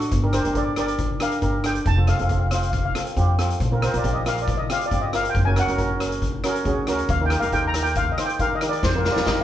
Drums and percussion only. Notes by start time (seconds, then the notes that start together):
0.01 closed hi-hat
0.11 kick, closed hi-hat
0.33 cross-stick, closed hi-hat
0.45 closed hi-hat
0.55 kick, closed hi-hat
0.76 cross-stick, closed hi-hat
0.88 closed hi-hat
0.99 kick, closed hi-hat
1.20 cross-stick, closed hi-hat
1.31 closed hi-hat
1.42 kick, closed hi-hat
1.64 cross-stick, closed hi-hat
1.75 closed hi-hat
1.86 kick, closed hi-hat
2.07 cross-stick, closed hi-hat
2.19 closed hi-hat
2.29 kick, closed hi-hat
2.51 cross-stick, closed hi-hat
2.63 closed hi-hat
2.73 kick, closed hi-hat
2.95 cross-stick, closed hi-hat
3.07 closed hi-hat
3.17 kick, closed hi-hat
3.39 cross-stick, closed hi-hat
3.50 closed hi-hat
3.60 kick, closed hi-hat
3.82 cross-stick, closed hi-hat
3.94 closed hi-hat
4.04 kick, closed hi-hat
4.26 cross-stick, closed hi-hat
4.38 closed hi-hat
4.48 kick, closed hi-hat
4.70 cross-stick, closed hi-hat
4.81 closed hi-hat
4.91 kick, closed hi-hat
5.13 cross-stick, closed hi-hat
5.25 closed hi-hat
5.35 kick, closed hi-hat
5.56 cross-stick, closed hi-hat
5.68 closed hi-hat
5.78 kick, closed hi-hat
6.00 cross-stick, closed hi-hat
6.12 closed hi-hat
6.22 kick, closed hi-hat
6.44 cross-stick, closed hi-hat
6.55 closed hi-hat
6.65 kick, closed hi-hat
6.87 cross-stick, closed hi-hat
6.99 closed hi-hat
7.09 kick, closed hi-hat
7.30 cross-stick, closed hi-hat
7.42 closed hi-hat
7.52 kick, closed hi-hat
7.74 cross-stick, closed hi-hat
7.86 closed hi-hat
7.95 kick, closed hi-hat
8.18 cross-stick, closed hi-hat
8.29 closed hi-hat
8.39 kick, closed hi-hat
8.61 cross-stick, closed hi-hat
8.73 closed hi-hat
8.83 kick, snare
9.05 snare
9.16 snare
9.26 kick, snare